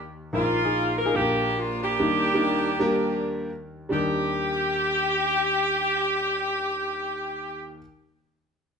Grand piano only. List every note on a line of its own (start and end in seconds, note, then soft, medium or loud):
0.00 0.29 D#2 medium
0.00 0.29 D#3 medium
0.33 1.10 A#1 medium
0.33 1.11 A#2 medium
0.33 0.57 D#4 medium
0.33 0.57 F4 medium
0.33 0.58 A#4 medium
0.64 0.95 D#4 medium
0.64 0.95 F4 medium
0.64 0.95 G#4 medium
1.05 1.14 D#4 medium
1.05 1.13 F4 medium
1.05 1.13 G#4 medium
1.14 1.96 A#1 medium
1.14 1.96 A#2 medium
1.14 1.85 D4 medium
1.14 1.85 F4 medium
1.14 1.20 G#4 medium
1.20 1.88 A#4 loud
1.99 3.88 D#2 medium
1.99 3.88 D#3 medium
1.99 2.26 G3 medium
1.99 2.26 A#3 medium
1.99 2.26 D4 medium
1.99 2.26 D#4 medium
1.99 2.26 A#4 medium
2.34 2.68 G3 loud
2.34 2.68 A#3 medium
2.34 2.69 D4 medium
2.34 2.69 D#4 medium
2.34 2.69 A#4 loud
2.79 3.49 G3 loud
2.79 3.49 A#3 medium
2.79 3.49 D4 medium
2.79 3.49 G4 medium
2.79 3.49 A#4 loud
3.89 7.78 D#2 medium
3.89 7.76 G3 medium
3.89 7.77 D4 medium
3.89 7.79 D#4 medium
3.93 7.80 A#4 loud